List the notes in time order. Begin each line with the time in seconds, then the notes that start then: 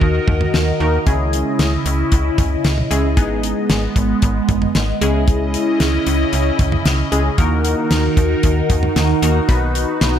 Already playing: D#3 F#4 A#4 D#5
0.01 D#2, kick
0.28 D#2, kick, mid tom
0.41 mid tom
0.54 D#2, snare
0.80 D#2 A#3 D#4 F#4 A#4
1.06 C#2 C#3 G#3 C#4 E4 G#4, kick, closed hi-hat
1.33 closed hi-hat
1.59 C#2, snare, closed hi-hat
1.85 C#2, closed hi-hat
2.12 C#2, kick, closed hi-hat
2.38 C#2, kick, closed hi-hat, mid tom
2.64 C#2, snare, closed hi-hat
2.78 mid tom
2.91 C#2 G#3 C#4 E4 G#4, closed hi-hat
3.17 G#1 G#3 B3 D#4 G#4, kick, closed hi-hat
3.43 closed hi-hat
3.70 G#1, snare, closed hi-hat
3.96 G#1, kick, closed hi-hat
4.22 G#1, kick, closed hi-hat
4.49 G#1, kick, closed hi-hat, mid tom
4.62 mid tom
4.75 G#1, snare, closed hi-hat
5.01 C#2 C#3 G#3 C#4 E4 G#4 D#5, closed hi-hat
5.28 kick, closed hi-hat
5.54 closed hi-hat
5.80 C#2, snare, closed hi-hat
6.07 C#2, closed hi-hat
6.33 C#2, closed hi-hat
6.59 C#2, kick, closed hi-hat, mid tom
6.72 mid tom
6.85 C#2, snare, closed hi-hat
7.12 C#2 G#3 C#4 E4 G#4, closed hi-hat
7.38 D#2 D#3 A#3 D#4 F#4 A#4, kick, closed hi-hat
7.65 closed hi-hat
7.91 D#2, snare, closed hi-hat
8.17 D#2, kick, closed hi-hat
8.43 D#2, kick, closed hi-hat
8.70 D#2, kick, closed hi-hat, mid tom
8.83 mid tom
8.96 D#2, snare, closed hi-hat
9.22 D#2 A#3 D#4 F#4 A#4, closed hi-hat
9.49 B1 B3 D#4 F#4 B4, kick, closed hi-hat
9.75 closed hi-hat
10.01 B1, snare, closed hi-hat